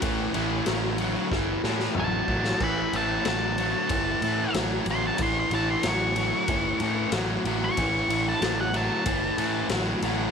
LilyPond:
<<
  \new Staff \with { instrumentName = "Lead electric guitar" } { \time 4/4 \key a \mixolydian \tempo 4 = 93 r2. a''4 | b''8 a''8 a''2 r8 c'''16 a''16 | c'''16 c'''16 a''16 c'''16 cis'''2 r8. cis'''16~ | cis'''8. a''8 fis''16 a''2 r8 | }
  \new Staff \with { instrumentName = "Overdriven electric guitar" } { \clef bass \time 4/4 \key a \mixolydian <a, e>8 <a, e>8 <a, fis>8 <a, fis>8 <a, e>8 <a, e>8 <a, fis>8 <a, fis>8 | <a, e>8 <a, e>8 <a, fis>8 <a, fis>8 <a, e>8 <a, e>8 <a, fis>8 <a, fis>8 | <a, e>8 <a, e>8 <a, fis>8 <a, fis>8 <a, e>8 <a, e>8 <a, fis>8 <a, fis>8 | <a, e>8 <a, e>8 <a, fis>8 <a, fis>8 <a, e>8 <a, e>8 <a, fis>8 <a, fis>8 | }
  \new Staff \with { instrumentName = "Picked electric bass" } { \clef bass \time 4/4 \key a \mixolydian a,,8 a,,8 a,,4 g,,8 a,8 a,,8 a,,8 | a,,8 a,,8 a,,4 g,,8 a,8 a,,8 a,,8 | a,,8 a,,8 a,,4 g,,8 a,8 a,,8 a,,8 | a,,8 a,,8 a,,4 g,,8 a,8 a,,8 a,,8 | }
  \new DrumStaff \with { instrumentName = "Drums" } \drummode { \time 4/4 <bd cymr>8 cymr8 <cymr sn>8 cymr8 <bd sn>8 sn16 sn16 toml8 bd16 sn16 | <cymc bd>8 cymr8 <cymr sn>8 cymr8 <bd cymr>8 cymr8 <cymr sn>8 cymr8 | <bd cymr>8 cymr8 <cymr sn>8 cymr8 <bd cymr>8 cymr8 <cymr sn>8 cymr8 | <bd cymr>8 cymr8 <cymr sn>8 cymr8 <bd cymr>8 cymr8 <cymr sn>8 cymr8 | }
>>